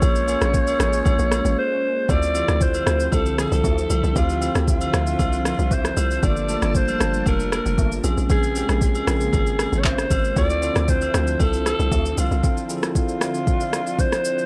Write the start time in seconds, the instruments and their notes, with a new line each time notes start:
Already playing: string machine G#3 A#3 C#4, tine electric piano A#3 C#4 F4 G#4, alto saxophone C#5
0.02 log drum bass A#1, kick, high agogo, shaker
0.16 shaker
0.27 tine electric piano A#3 C#4 F4 G#4, high agogo, shaker
0.41 log drum bass A#1, cross-stick, shaker
0.54 kick, shaker
0.67 high agogo, shaker
0.79 log drum bass A1, tine electric piano A#3 C#4 F4 G#4, cross-stick, shaker
0.93 shaker
1.05 log drum bass A#1, kick, high agogo, shaker
1.19 log drum bass A#1, shaker
1.32 cross-stick, high agogo, shaker
1.45 log drum bass A1, shaker
1.59 alto saxophone C5
2.08 log drum bass D2, string machine D3 F3 C4 E5, tine electric piano C4 E4 F4 A4, alto saxophone D5, kick, high agogo, shaker
2.23 shaker
2.34 tine electric piano C4 E4 F4 G4, high agogo, shaker
2.48 log drum bass D2, cross-stick, shaker
2.61 alto saxophone C5, kick, shaker
2.74 high agogo, shaker
2.85 log drum bass D2, tine electric piano C4 E4 F4 C5, cross-stick, shaker
3.00 shaker
3.12 log drum bass C2, alto saxophone A4, kick, high agogo, shaker
3.26 shaker
3.38 alto saxophone A4, cross-stick, high agogo, shaker
3.52 log drum bass C2, shaker
3.64 log drum bass D2, kick, low woodblock, shaker
3.78 shaker
3.90 log drum bass C2, high agogo, shaker
4.03 log drum bass C2, shaker
4.15 log drum bass D2, tine electric piano C4 E4 F4 G4, alto saxophone F4, kick, high agogo, shaker
4.29 shaker
4.41 tine electric piano C4 E4 F4 A4, high agogo, shaker
4.55 log drum bass D2, cross-stick, shaker
4.68 alto saxophone F4, kick, shaker
4.81 high agogo, shaker
4.92 log drum bass D2, tine electric piano C4 F4 C5 E5, cross-stick, shaker
5.07 shaker
5.19 log drum bass C2, kick, high agogo, shaker
5.33 shaker
5.45 cross-stick, high agogo, shaker
5.59 log drum bass C2, shaker
5.71 alto saxophone C5, kick, low woodblock, shaker
5.85 cross-stick, shaker
5.97 log drum bass C2, high agogo, shaker
6.11 shaker
6.22 log drum bass G1, string machine G3 A#3 A5, tine electric piano A#3 D4 F4 A4, alto saxophone D5, kick, high agogo, shaker
6.36 shaker
6.48 tine electric piano A3 D4 F4 A4, high agogo, shaker
6.54 tine electric piano A#3
6.62 log drum bass G1, cross-stick, shaker
6.75 alto saxophone C5, kick, shaker
6.88 high agogo, shaker
6.99 log drum bass G1, tine electric piano A#3 D4 F4 A5, cross-stick, shaker
7.14 shaker
7.26 log drum bass F1, alto saxophone A#4, kick, high agogo, shaker
7.40 shaker
7.52 alto saxophone A#4, cross-stick, high agogo, shaker
7.66 log drum bass F1, shaker
7.78 log drum bass G1, kick, low woodblock, shaker
7.92 shaker
8.03 log drum bass A#1, string machine C#3 G#3 A#3, tine electric piano C4 C#4 F4 G#4, high agogo, shaker
8.17 log drum bass A#1, shaker
8.30 log drum bass A#1, alto saxophone G#4, kick, high agogo, shaker
8.43 shaker
8.55 tine electric piano C4 C#4 F4 G4, high agogo, shaker
8.69 log drum bass A#1, cross-stick, shaker
8.81 alto saxophone G#4, kick, shaker
8.95 high agogo, shaker
9.06 log drum bass A#1, tine electric piano C4 C#4 F4 A#4, cross-stick, shaker
9.21 shaker
9.33 log drum bass G#1, kick, high agogo, shaker
9.47 shaker
9.59 cross-stick, high agogo, shaker
9.72 log drum bass G#1, shaker
9.79 alto saxophone C#5
9.84 alto saxophone C5, kick, clap, low woodblock, shaker
9.98 cross-stick, shaker
10.11 log drum bass G#1, kick, high agogo, shaker
10.24 shaker
10.35 log drum bass D2, string machine D3 F3 C4 E5, tine electric piano C4 E4 F4 A4, alto saxophone D5, kick, high agogo, shaker
10.50 shaker
10.61 tine electric piano C4 E4 F4 A4, high agogo, shaker
10.76 log drum bass D2, cross-stick, shaker
10.88 alto saxophone C5, kick, shaker
11.01 high agogo, shaker
11.13 log drum bass D2, tine electric piano C4 E4 F4 A4, cross-stick, shaker
11.27 shaker
11.40 log drum bass C2, alto saxophone A4, kick, high agogo, shaker
11.53 shaker
11.66 alto saxophone A4, cross-stick, high agogo, shaker
11.79 log drum bass C2, shaker
11.92 log drum bass D2, kick, low woodblock, shaker
12.06 shaker
12.18 log drum bass C2, alto saxophone F4, high agogo, shaker
12.31 log drum bass C2, shaker
12.43 tine electric piano C4 E4 F4 A4, string machine D4, kick, shaker
12.57 shaker
12.68 tine electric piano C4 E4 F4 G#4, shaker
12.77 tine electric piano A4
12.83 cross-stick, shaker
12.95 alto saxophone F4, kick, shaker
13.09 shaker
13.20 tine electric piano C4 F4 C5 E5, cross-stick, shaker
13.34 shaker
13.47 kick, shaker
13.60 shaker
13.73 cross-stick, shaker
13.87 shaker
13.99 alto saxophone C5, kick, shaker
14.12 cross-stick, shaker
14.25 shaker
14.38 shaker